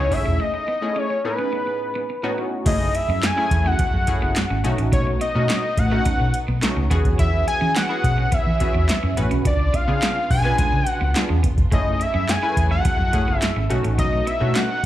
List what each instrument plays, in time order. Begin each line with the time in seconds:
Already playing: analog polysynth B3 D#4 E4 G#4, analog synth lead C#5
0.11 fingered electric bass F#1, analog polysynth A3 C#4 E4 G#4, analog synth lead E5, muted clean electric guitar stroke, kick, open hi-hat
0.26 fingered electric bass E1, clean electric guitar C#4
0.40 clean electric guitar A3, analog synth lead D#5
0.54 muted clean electric guitar stroke
0.68 clean electric guitar B3
0.82 analog polysynth A3 C#4 E4 G#4
0.96 clean electric guitar C#4, analog synth lead C#5
1.10 muted clean electric guitar stroke
1.24 analog polysynth A2 B3 C#4 D#4 G#4, analog synth lead B4
1.39 clean electric guitar C#4
1.53 clean electric guitar B3
1.67 muted clean electric guitar stroke
1.95 clean electric guitar B3
2.10 muted clean electric guitar stroke
2.23 analog polysynth A2 B3 C#4 D#4 F#4, clean electric guitar C#4
2.38 clean electric guitar B3
2.66 fingered electric bass F#1, string section F#3 A3 E4 G#4, analog polysynth A3 C#4 E4 G#4, clean electric guitar A3, analog synth lead D#5, kick, closed hi-hat, crash
2.95 analog synth lead E5, muted clean electric guitar stroke, closed hi-hat
3.09 fingered electric bass F#2, clean electric guitar C#4
3.23 analog synth lead G#5, snare, clap, closed hi-hat
3.36 analog polysynth A3 C#4 E4 G#4, clean electric guitar E4
3.51 fingered electric bass E2, muted clean electric guitar stroke, kick, closed hi-hat
3.66 clean electric guitar C#4, analog synth lead F#5
3.79 clean electric guitar B3, muted fingered electric bass stroke, kick, closed hi-hat
3.94 fingered electric bass F#2
4.07 analog polysynth A3 C#4 E4 G#4, muted clean electric guitar stroke, kick, closed hi-hat
4.22 fingered electric bass F#1, clean electric guitar B3
4.36 snare, clap, closed hi-hat
4.50 fingered electric bass G#1, clean electric guitar C#4
4.64 fingered electric bass B1, analog polysynth A3 C#4 D#4 F#4, string section A3 B3 D#4, muted clean electric guitar stroke, closed hi-hat
4.78 fingered electric bass A1, clean electric guitar C#4, closed hi-hat
4.92 fingered electric bass B1, clean electric guitar B3, analog synth lead C#5, kick, closed hi-hat
5.07 muted clean electric guitar stroke
5.21 clean electric guitar B3, analog synth lead D#5, closed hi-hat
5.35 fingered electric bass B2, analog polysynth A3 C#4 D#4 F#4
5.49 clean electric guitar C#4, snare, clap, closed hi-hat
5.64 muted clean electric guitar stroke
5.77 fingered electric bass A2, analog synth lead F#5, kick, closed hi-hat
5.91 analog polysynth A3 C#4 D#4 F#4, clean electric guitar C#4
6.05 clean electric guitar B3, muted fingered electric bass stroke, kick, closed hi-hat
6.20 fingered electric bass B2, muted clean electric guitar stroke
6.34 closed hi-hat
6.48 fingered electric bass B1, clean electric guitar B3
6.62 analog polysynth A3 C#4 D#4 F#4, muted clean electric guitar stroke, snare, clap, closed hi-hat
6.77 fingered electric bass C#2, clean electric guitar C#4
6.90 fingered electric bass E2, string section E3 C#4 G#4, analog polysynth B3 C#4 F#4 G#4, clean electric guitar B3, kick, closed hi-hat
7.05 fingered electric bass D#2, kick, closed hi-hat
7.19 fingered electric bass E2, clean electric guitar E4, analog synth lead E5, kick, closed hi-hat
7.47 analog synth lead G#5, muted clean electric guitar stroke, closed hi-hat
7.61 fingered electric bass E3, clean electric guitar C#4
7.76 analog synth lead F#5, snare, clap, closed hi-hat
7.89 analog polysynth B3 C#4 F#4 G#4, clean electric guitar E4
8.04 fingered electric bass B2, muted clean electric guitar stroke, kick, closed hi-hat
8.18 clean electric guitar C#4
8.32 clean electric guitar B3, analog synth lead E5, muted fingered electric bass stroke, kick, closed hi-hat
8.47 fingered electric bass E3
8.60 analog polysynth B3 C#4 F#4 G#4, muted clean electric guitar stroke, kick, closed hi-hat
8.74 fingered electric bass E2, clean electric guitar B3
8.89 snare, clap, closed hi-hat
9.03 fingered electric bass F#2, clean electric guitar C#4
9.17 fingered electric bass A1, analog polysynth B3 C#4 F#4 B4, muted clean electric guitar stroke, closed hi-hat
9.31 fingered electric bass B1, clean electric guitar C#4, closed hi-hat
9.45 fingered electric bass C#2, string section C#3 B3 D4 F4, clean electric guitar C#4, analog synth lead D5, kick, closed hi-hat
9.59 muted clean electric guitar stroke
9.74 clean electric guitar B3, analog synth lead F5, kick, closed hi-hat
9.88 fingered electric bass C#3, analog polysynth B3 D4 F4 G#4
10.02 clean electric guitar B3, snare, clap, closed hi-hat
10.16 muted clean electric guitar stroke
10.30 fingered electric bass B2, analog synth lead G#5, kick, open hi-hat
10.44 analog polysynth B3 D4 F4 B4, clean electric guitar C#4
10.58 clean electric guitar G#3, kick, closed hi-hat
10.72 fingered electric bass C#3, muted clean electric guitar stroke
10.87 analog synth lead F#5, closed hi-hat
11.01 fingered electric bass C#2, clean electric guitar B3
11.15 analog polysynth B3 D4 F4 G#4, muted clean electric guitar stroke, snare, clap, closed hi-hat
11.29 fingered electric bass E2, clean electric guitar C#4
11.43 fingered electric bass F#1, clean electric guitar B3, kick, closed hi-hat
11.58 fingered electric bass F1, kick, closed hi-hat
11.71 fingered electric bass F#1, string section F#3 A3 E4 G#4, clean electric guitar A3, analog polysynth A3 C#4 E4 G#4, analog synth lead D#5, kick, closed hi-hat
12.00 analog synth lead E5, muted clean electric guitar stroke, closed hi-hat
12.14 fingered electric bass F#2, clean electric guitar C#4
12.29 analog synth lead G#5, snare, clap, closed hi-hat
12.42 analog polysynth A3 C#4 E4 B4, clean electric guitar E4
12.57 fingered electric bass E2, muted clean electric guitar stroke, kick, closed hi-hat
12.71 clean electric guitar C#4, analog synth lead F#5
12.85 clean electric guitar B3, muted fingered electric bass stroke, kick, closed hi-hat
12.99 fingered electric bass F#2
13.13 analog polysynth A3 C#4 E4 G#4, muted clean electric guitar stroke, kick, closed hi-hat
13.28 fingered electric bass F#1, clean electric guitar B3
13.38 analog synth lead E5, closed hi-hat
13.42 snare, clap
13.56 fingered electric bass G#1, clean electric guitar C#4
13.70 fingered electric bass B1, analog polysynth A3 C#4 D#4 F#4, string section A3 B3 D#4, muted clean electric guitar stroke, closed hi-hat
13.84 fingered electric bass A1, clean electric guitar C#4, closed hi-hat
13.98 fingered electric bass B1, clean electric guitar B3, analog synth lead D#5, kick, closed hi-hat
14.13 muted clean electric guitar stroke
14.27 clean electric guitar B3, analog synth lead E5, closed hi-hat
14.40 fingered electric bass B2, analog polysynth A3 C#4 D#4 F#4
14.55 clean electric guitar C#4, analog synth lead F#5, snare, clap, closed hi-hat
14.69 muted clean electric guitar stroke